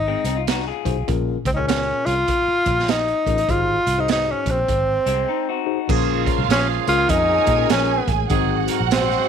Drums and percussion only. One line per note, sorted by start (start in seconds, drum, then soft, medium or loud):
0.25 closed hi-hat medium
0.47 snare medium
0.47 closed hi-hat loud
0.85 kick medium
0.85 closed hi-hat medium
1.08 kick loud
1.08 closed hi-hat medium
1.45 kick medium
1.45 closed hi-hat medium
1.69 snare loud
1.69 closed hi-hat medium
2.06 closed hi-hat medium
2.28 kick medium
2.28 closed hi-hat medium
2.65 kick medium
2.65 closed hi-hat medium
2.79 snare soft
2.88 snare loud
2.88 closed hi-hat loud
3.08 closed hi-hat soft
3.27 kick medium
3.27 closed hi-hat medium
3.38 closed hi-hat medium
3.49 kick loud
3.49 closed hi-hat medium
3.87 closed hi-hat medium
4.08 snare loud
4.08 closed hi-hat medium
4.46 kick medium
4.46 closed hi-hat medium
4.68 kick medium
4.68 closed hi-hat medium
5.06 closed hi-hat medium
5.89 kick loud
5.89 crash medium
6.26 kick medium
6.26 closed hi-hat medium
6.50 snare loud
6.50 closed hi-hat loud
6.87 closed hi-hat medium
7.09 kick loud
7.09 closed hi-hat medium
7.47 kick medium
7.47 closed hi-hat medium
7.70 snare loud
7.70 closed hi-hat loud
8.08 kick medium
8.08 closed hi-hat medium
8.30 kick loud
8.30 closed hi-hat medium
8.68 closed hi-hat medium
8.91 snare loud
8.91 closed hi-hat medium
9.11 snare soft